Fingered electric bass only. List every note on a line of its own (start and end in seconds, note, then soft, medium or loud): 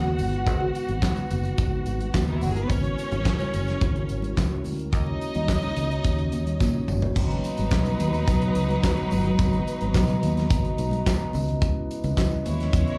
0.00 0.13 D#2 medium
0.19 0.47 G1 medium
0.47 0.69 G#1 loud
0.89 1.11 G#1 medium
1.31 1.53 F#1 medium
1.59 1.81 G#1 medium
1.87 2.09 G#1 medium
2.14 2.44 D#2 medium
2.42 2.64 G1 medium
2.70 2.92 G#1 medium
3.12 3.34 G#1 medium
3.54 3.76 F#1 medium
3.82 4.04 G#1 loud
4.10 4.32 G#1 medium
4.38 4.60 C#2 loud
4.66 4.93 D2 medium
4.93 5.15 D#2 loud
5.35 5.57 D#2 medium
5.77 5.99 C#2 medium
6.05 6.27 D#2 medium
6.33 6.55 D#2 medium
6.61 6.83 A#2 medium
6.89 7.11 G1 medium
7.17 7.39 G#1 medium
7.59 7.70 G#1 medium
7.72 7.94 B1 medium
8.00 8.22 D#2 medium
8.28 8.50 B1 medium
8.56 8.78 C#2 medium
9.12 9.34 G1 medium
9.39 9.61 G#1 loud
9.82 9.93 G#1 medium
9.95 10.17 B1 medium
10.23 10.45 D#2 medium
10.51 10.73 G#1 medium
10.79 11.01 B1 medium
11.35 11.79 C#2 loud
12.04 12.15 C#2 loud
12.18 12.40 C#2 medium
12.46 12.68 D#2 medium
12.74 12.96 E2 medium